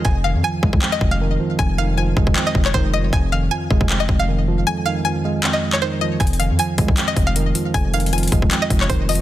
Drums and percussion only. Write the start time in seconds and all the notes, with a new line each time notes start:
0.05 kick
0.63 kick
0.73 kick
0.82 clap
1.01 kick
1.59 kick
2.17 kick
2.27 kick
2.36 clap
2.55 kick
2.65 clap
2.74 kick
3.13 kick
3.71 kick
3.81 kick
3.90 clap
4.09 kick
5.44 clap
5.73 clap
6.20 kick, closed hi-hat
6.27 closed hi-hat
6.33 closed hi-hat
6.40 closed hi-hat
6.59 closed hi-hat
6.78 kick, closed hi-hat
6.88 kick
6.97 clap, closed hi-hat
7.16 kick, closed hi-hat
7.36 closed hi-hat
7.55 closed hi-hat
7.74 kick, closed hi-hat
7.94 closed hi-hat
8.00 closed hi-hat
8.06 closed hi-hat
8.13 closed hi-hat
8.18 closed hi-hat
8.23 closed hi-hat
8.28 closed hi-hat
8.32 kick, closed hi-hat
8.42 kick
8.51 clap, closed hi-hat
8.70 kick, closed hi-hat
8.81 clap
8.90 kick, closed hi-hat
9.09 closed hi-hat, open hi-hat
9.15 closed hi-hat